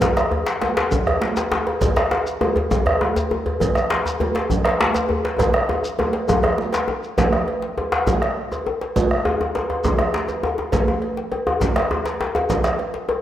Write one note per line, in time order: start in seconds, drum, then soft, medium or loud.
0.01 bombo low medium
0.01 cowbell medium
0.01 djembe slap medium
0.01 high conga medium
0.01 djembe bass medium
0.01 low conga medium
0.01 shekere medium
0.17 bombo rim medium
0.17 djembe slap medium
0.17 djembe tone medium
0.17 shekere soft
0.31 cowbell soft
0.31 djembe bass medium
0.46 djembe slap loud
0.46 djembe slap soft
0.46 high conga soft
0.46 shekere soft
0.61 cowbell medium
0.61 djembe slap medium
0.61 high conga medium
0.61 djembe tone medium
0.77 cowbell soft
0.77 djembe slap loud
0.77 djembe slap medium
0.91 bombo low medium
0.91 djembe slap soft
0.91 high conga soft
0.91 djembe tone medium
0.91 low conga medium
0.91 djembe bass medium
0.91 shekere medium
1.07 bombo rim medium
1.07 cowbell medium
1.07 djembe slap soft
1.07 djembe bass medium
1.21 djembe slap medium
1.21 djembe slap soft
1.21 high conga medium
1.37 cowbell soft
1.37 djembe slap medium
1.37 high conga soft
1.37 shekere soft
1.52 djembe slap loud
1.52 djembe slap soft
1.52 djembe tone medium
1.67 cowbell medium
1.67 djembe tone medium
1.81 bombo low loud
1.81 cowbell medium
1.81 high conga medium
1.81 djembe bass medium
1.81 low conga medium
1.81 djembe bass medium
1.81 shekere medium
1.96 bombo rim medium
1.96 djembe slap medium
1.96 shekere soft
2.11 cowbell soft
2.11 djembe slap medium
2.26 djembe slap soft
2.26 high conga soft
2.26 shekere soft
2.41 cowbell medium
2.41 djembe tone loud
2.41 djembe tone medium
2.41 high conga medium
2.56 cowbell soft
2.56 djembe slap medium
2.56 djembe bass medium
2.71 bombo low medium
2.71 djembe slap soft
2.71 djembe tone medium
2.71 high conga soft
2.71 low conga medium
2.71 djembe bass medium
2.71 shekere medium
2.86 bombo rim medium
2.86 cowbell medium
2.86 djembe slap soft
2.86 djembe bass medium
3.01 djembe tone loud
3.01 high conga medium
3.16 cowbell soft
3.16 djembe slap medium
3.16 high conga soft
3.16 djembe bass medium
3.16 shekere soft
3.31 djembe slap soft
3.31 djembe tone medium
3.46 cowbell soft
3.46 djembe bass medium
3.60 bombo low medium
3.60 cowbell medium
3.60 high conga medium
3.60 djembe bass medium
3.60 low conga medium
3.60 shekere medium
3.75 bombo rim medium
3.75 djembe slap medium
3.75 shekere soft
3.90 cowbell soft
3.90 djembe slap loud
4.05 djembe slap soft
4.05 djembe tone medium
4.05 high conga soft
4.05 shekere soft
4.20 cowbell medium
4.20 djembe tone medium
4.20 high conga medium
4.20 djembe bass medium
4.35 cowbell medium
4.35 djembe slap medium
4.50 bombo low medium
4.50 djembe slap soft
4.50 high conga soft
4.50 djembe bass medium
4.50 low conga medium
4.50 shekere medium
4.65 bombo rim medium
4.65 cowbell medium
4.65 djembe slap soft
4.65 djembe slap medium
4.80 djembe slap soft
4.80 djembe slap loud
4.80 high conga medium
4.94 cowbell medium
4.94 djembe slap medium
4.94 djembe tone medium
4.94 high conga soft
4.94 shekere soft
5.09 djembe slap soft
5.09 djembe tone medium
5.09 djembe bass medium
5.25 cowbell soft
5.25 djembe slap medium
5.38 bombo low loud
5.38 cowbell medium
5.38 djembe tone medium
5.38 high conga medium
5.38 djembe bass medium
5.38 low conga medium
5.38 shekere medium
5.54 bombo rim medium
5.54 djembe slap medium
5.54 high conga soft
5.69 bombo rim soft
5.69 cowbell soft
5.69 djembe tone loud
5.84 shekere soft
5.99 bombo rim soft
5.99 cowbell medium
5.99 djembe tone medium
5.99 high conga medium
5.99 djembe tone loud
6.13 bombo rim soft
6.13 cowbell medium
6.13 djembe slap medium
6.13 high conga soft
6.28 bombo low medium
6.28 djembe tone loud
6.28 djembe bass medium
6.28 low conga medium
6.28 shekere medium
6.43 bombo rim medium
6.43 cowbell medium
6.43 djembe slap soft
6.43 djembe tone loud
6.58 high conga medium
6.73 cowbell medium
6.73 djembe slap medium
6.73 high conga soft
6.73 shekere soft
6.88 djembe tone medium
6.88 high conga soft
7.03 djembe slap soft
7.03 shekere soft
7.18 bombo low medium
7.18 cowbell medium
7.18 djembe slap soft
7.18 djembe slap loud
7.18 high conga medium
7.18 djembe bass medium
7.18 low conga medium
7.18 shekere medium
7.32 bombo rim medium
7.32 djembe slap soft
7.32 djembe tone medium
7.48 cowbell soft
7.62 djembe slap medium
7.77 cowbell soft
7.77 djembe tone medium
7.77 high conga soft
7.92 cowbell medium
7.92 djembe slap loud
8.07 bombo low medium
8.07 djembe slap soft
8.07 high conga medium
8.07 djembe tone medium
8.07 djembe bass medium
8.07 low conga medium
8.07 shekere medium
8.22 bombo rim medium
8.22 djembe slap medium
8.37 high conga soft
8.52 cowbell soft
8.52 djembe tone medium
8.52 shekere soft
8.67 djembe tone medium
8.81 cowbell soft
8.81 djembe slap medium
8.96 bombo low medium
8.96 cowbell medium
8.96 djembe slap soft
8.96 high conga medium
8.96 low conga medium
8.96 djembe bass medium
8.96 shekere medium
9.11 bombo rim medium
9.11 djembe slap soft
9.25 cowbell soft
9.25 djembe tone loud
9.41 djembe slap soft
9.41 djembe tone medium
9.55 cowbell soft
9.55 djembe slap medium
9.55 high conga soft
9.55 djembe tone medium
9.70 cowbell soft
9.70 djembe tone medium
9.70 high conga soft
9.84 bombo low medium
9.84 djembe slap soft
9.84 djembe tone loud
9.84 high conga medium
9.84 djembe bass medium
9.84 low conga medium
9.84 shekere soft
9.99 bombo rim medium
9.99 cowbell soft
9.99 djembe slap medium
9.99 djembe tone medium
10.14 djembe slap medium
10.14 high conga soft
10.28 cowbell soft
10.28 djembe tone medium
10.28 shekere soft
10.43 djembe tone medium
10.43 djembe tone loud
10.58 djembe slap soft
10.58 djembe tone medium
10.72 bombo low medium
10.72 cowbell medium
10.72 djembe slap medium
10.72 djembe slap soft
10.72 high conga medium
10.72 djembe bass medium
10.72 low conga medium
10.72 shekere medium
10.88 djembe slap soft
10.88 djembe tone medium
11.02 cowbell soft
11.17 djembe slap soft
11.32 cowbell soft
11.32 djembe tone medium
11.47 cowbell soft
11.47 djembe tone loud
11.47 high conga soft
11.61 bombo low medium
11.61 djembe slap soft
11.61 djembe slap medium
11.61 high conga medium
11.61 djembe bass medium
11.61 low conga medium
11.61 shekere medium
11.76 bombo rim medium
11.76 cowbell medium
11.76 djembe slap medium
11.91 djembe tone loud
11.91 high conga soft
12.05 cowbell soft
12.05 djembe slap medium
12.05 shekere soft
12.21 djembe slap medium
12.21 djembe tone medium
12.35 cowbell soft
12.35 djembe slap medium
12.35 djembe tone loud
12.50 bombo low medium
12.50 cowbell medium
12.50 djembe slap medium
12.50 high conga medium
12.50 low conga medium
12.50 djembe bass medium
12.50 shekere medium
12.64 bombo rim medium
12.64 djembe slap medium
12.64 djembe slap soft
12.64 high conga soft
12.64 shekere soft
12.79 cowbell soft
12.79 djembe slap soft
12.79 high conga soft
12.94 djembe slap soft
13.09 cowbell soft
13.09 djembe slap soft
13.09 high conga soft
13.09 djembe tone medium